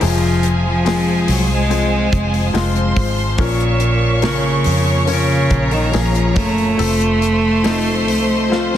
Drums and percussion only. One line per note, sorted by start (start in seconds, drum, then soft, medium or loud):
0.01 hi-hat pedal medium
0.01 open hi-hat loud
0.43 hi-hat pedal medium
0.43 open hi-hat medium
0.86 snare loud
0.86 hi-hat pedal medium
0.86 open hi-hat medium
1.28 hi-hat pedal medium
1.28 open hi-hat medium
1.71 hi-hat pedal medium
1.71 open hi-hat medium
2.13 kick medium
2.13 hi-hat pedal medium
2.13 open hi-hat medium
2.34 open hi-hat medium
2.55 snare medium
2.55 hi-hat pedal medium
2.55 open hi-hat medium
2.75 hi-hat pedal medium
2.97 kick loud
2.97 hi-hat pedal medium
2.97 open hi-hat medium
3.18 open hi-hat soft
3.38 kick loud
3.38 hi-hat pedal medium
3.38 open hi-hat loud
3.60 hi-hat pedal medium
3.80 hi-hat pedal medium
3.80 open hi-hat medium
4.22 snare loud
4.22 hi-hat pedal medium
4.22 open hi-hat medium
4.64 hi-hat pedal medium
4.64 open hi-hat medium
5.07 hi-hat pedal medium
5.07 open hi-hat medium
5.50 kick medium
5.50 hi-hat pedal medium
5.50 open hi-hat medium
5.71 open hi-hat medium
5.93 snare medium
5.93 hi-hat pedal medium
5.93 open hi-hat medium
6.14 hi-hat pedal medium
6.36 kick medium
6.36 hi-hat pedal medium
6.36 open hi-hat medium
6.58 open hi-hat soft
6.79 hi-hat pedal medium
6.79 open hi-hat loud
7.00 hi-hat pedal medium
7.22 hi-hat pedal medium
7.22 open hi-hat medium
7.64 snare loud
7.64 hi-hat pedal medium
7.64 open hi-hat medium
8.08 hi-hat pedal medium
8.08 open hi-hat medium
8.52 snare medium